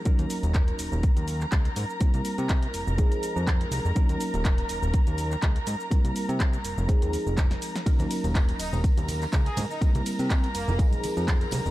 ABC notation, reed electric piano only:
X:1
M:4/4
L:1/8
Q:"Swing 16ths" 1/4=123
K:Ebdor
V:1 name="Reed electric piano"
[G,B,DEB]8 | [=G,B,C=EB]4 [F,A,C_EA]4 | [G,B,DEB]8 | [=G,B,C=EB]4 [F,A,C_EA]4 |
[G,B,DEB]8 | [=G,B,C=EB]4 [F,A,C_EA]4 |]